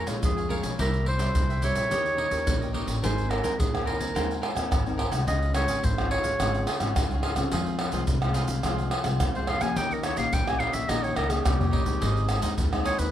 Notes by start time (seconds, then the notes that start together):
Already playing: A#2
0.06 A#1 G#3 C#4 F4 C#5 F5 G#5, pandeiro, shaker
0.23 F2 F3 G#4, pandeiro, shaker, surdo
0.37 C#5 F5 G#5, pandeiro, shaker
0.49 G#3 C#4 F4 A#4 C#5 F5 G#5, pandeiro
0.63 B1 C#5 F5 G#5, pandeiro, shaker
0.78 C2 C3 G3 C4 E4 G4 A#4 C5 E5, pandeiro, shaker, surdo
0.94 pandeiro, shaker
1.05 E4 G4 C5 E5, pandeiro
1.19 G3 C4 E4 G4 C5 E5, pandeiro, shaker
1.35 C2, pandeiro, shaker, surdo
1.49 G4 C5 E5, pandeiro, shaker
1.62 G3 C4 E4 G4 C5 C#5 E5, pandeiro, shaker
1.75 A#1 G4 C5 E5, pandeiro, shaker
1.90 D#2 D#3 C#4 D#4 G4 A#4 C#5 D#5, pandeiro, shaker, surdo
2.06 pandeiro, shaker
2.17 D#4 G4 C#5 D#5, pandeiro
2.30 D#2 C#4 G4 A#4 C#5 D#5, pandeiro, shaker
2.47 A#1 A#2, pandeiro, shaker, surdo
2.61 G4 C#5 D#5, pandeiro, shaker
2.73 C#4 D#4 G4 A#4 C#5 D#5, pandeiro
2.86 A1 G4 C#5 D#5, pandeiro, shaker
3.02 G#1 G#3 C4 D#4 A#4 C5 G#5, pandeiro, shaker, surdo
3.18 pandeiro, shaker, surdo
3.30 A#4 C5 G#5, pandeiro, tamborim
3.43 C4 D#4 A#4 C5 G#5, pandeiro, shaker, surdo
3.59 D#2 D#3 G#4, pandeiro, shaker, surdo
3.74 C4 D#4 A#4 C5 G#5, pandeiro, tamborim, shaker
3.85 A#4 C5 G#5, pandeiro
3.99 D#2 C4 D#4 A#4 C5 G#5, pandeiro, shaker, surdo
4.15 D#2 G#3 C4 D#4 A#4 C5 G#5, pandeiro, tamborim, shaker, surdo
4.31 pandeiro, shaker
4.42 A#4 C5 G#5, pandeiro, tamborim
4.55 D#2 C4 D#4 A#4 C5 G#5, pandeiro, tamborim, shaker
4.71 G#1 D#3, pandeiro, tamborim, shaker, surdo
4.85 C4 D#4 A#4 C5 G#5, pandeiro, shaker
4.98 A#4 C5 G#5, pandeiro, tamborim, surdo
5.11 C2 G#3 C#4 F4 C5 G#5, pandeiro, tamborim, shaker, surdo
5.27 C#2 C#3 F4 G#4 C#5 D#5 F5, pandeiro, shaker, surdo
5.42 pandeiro, shaker, surdo
5.54 G#3 C#4 F4 G#4 C#5 F5, pandeiro, tamborim, shaker
5.67 G#1 F4 G#4 C#5 F5, pandeiro, shaker, surdo
5.83 G#1 G#2 C5, pandeiro, shaker, surdo
5.98 G#3 C#4 F4 G#4 C#5 F5, pandeiro, tamborim, shaker
6.11 F4 G#4 C#5 F5, pandeiro
6.24 G#1 G#4 C#5 F5, pandeiro, shaker, surdo
6.40 G#1 C#3 G#3 C#4 F4 G#4 C#5 F5, pandeiro, tamborim, shaker, surdo
6.55 pandeiro, shaker
6.67 F4 G#4 C#5 F5, pandeiro, tamborim, shaker
6.80 G#1 G#3 C#4 F4 G#4 C#5 F5, pandeiro, tamborim, shaker
6.96 C#2 G#2, pandeiro, tamborim, shaker, surdo
7.11 G#3 C#4 F4 G#4 C#5 F5, pandeiro, shaker
7.22 F4 G#4 C#5 F5, pandeiro, tamborim
7.36 C#3 G#3 C4 F4 G#4 C#5 F5, pandeiro, tamborim, shaker, surdo
7.52 F2 F3 F4 G#4 C5 F5, pandeiro, shaker, surdo
7.66 pandeiro, shaker, surdo
7.79 F4 G#4 C5 F5, pandeiro, tamborim
7.92 C2 G#3 C4 F4 G#4 C5 F5, pandeiro, shaker, surdo
8.07 C2 C3, pandeiro, shaker, surdo
8.22 G#3 C4 F4 G#4 C5 F5, pandeiro, tamborim, shaker
8.34 F4 G#4 C5 F5, pandeiro, shaker
8.48 C2 G#4 C5 F5, pandeiro, shaker, surdo
8.63 C2 F3 G#3 C4 F4 G#4 C5 F5, pandeiro, tamborim, shaker, surdo
8.78 pandeiro, shaker
8.91 F4 G#4 C5 F5, pandeiro, tamborim
9.04 C2 G#3 C4 F4 G#4 C5 F5, pandeiro, tamborim, shaker
9.20 F2 C3, pandeiro, tamborim, shaker, surdo
9.34 G#3 C4 F4 G#4 C5 F5, pandeiro, shaker
9.47 F4 G#4 C5 F5, pandeiro, tamborim
9.61 F3 A#3 C#4 G4 G#4 C5 F5 G#5, pandeiro, tamborim, shaker, surdo
9.76 D#2 D#3 D#4 G4 C#5 D#5 G5, pandeiro, shaker, surdo
9.91 A#4, pandeiro, shaker, surdo
10.03 D#4 G4 C#5 D#5, pandeiro, tamborim, shaker
10.16 A#1 A#3 C#4 D#4 G4 C#5 D#5 F5, pandeiro, shaker, surdo
10.33 A#1 A#2 G5, pandeiro, shaker, surdo
10.47 A#3 C#4 G4 C#5 D#5 G#5, pandeiro, tamborim, shaker
10.59 D#4 G4 C#5 D#5 F5, pandeiro
10.72 A#1 G4 C#5 D#5 E5, pandeiro, shaker, surdo
10.88 A#1 D#3 A#3 C#4 D#4 G4 C#5 D#5, pandeiro, tamborim, shaker, surdo
11.03 C#5, pandeiro, shaker
11.16 C#2 D#4 G4 A#4 C#5 D#5, pandeiro, tamborim
11.28 A#3 C#4 G4 G#4 C#5 D#5, pandeiro, tamborim, shaker
11.45 C2 A#2 G4, pandeiro, tamborim, shaker, surdo
11.58 A#3 C#4 G4 C#5 D#5, surdo, pandeiro, shaker
11.71 A#1 D#4 G4 C#5 D#5, pandeiro, surdo
11.85 G#3 C4 D#4 G4 C#5 D#5, pandeiro, shaker, surdo
12.00 G#1 G#2 D#4 G#4 C5 D#5, pandeiro, shaker, surdo
12.17 pandeiro, shaker, surdo
12.28 D#4 G#4 C5 D#5, pandeiro, tamborim, shaker
12.41 D#2 G#3 C4 D#4 G#4 C5 D#5, pandeiro, shaker, surdo
12.58 D#2 D#3, pandeiro, shaker, surdo
12.72 G#3 C4 D#4 G#4 C5 D#5, pandeiro, tamborim, shaker
12.84 D#4 G#4 C5 C#5 D#5, pandeiro, shaker
12.97 D#2 B4 C5 D#5, pandeiro, shaker, surdo